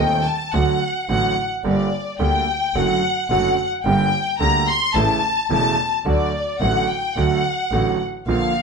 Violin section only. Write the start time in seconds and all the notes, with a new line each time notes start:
0.00 G5
0.25 A5
0.53 F#5
1.08 F#5
1.64 D5
2.19 G5
2.74 F#5
3.28 F#5
3.84 G5
4.40 A#5
4.68 C6
4.95 A5
5.51 A5
6.06 D5
6.62 F#5
6.88 G5
7.16 F#5
8.28 F5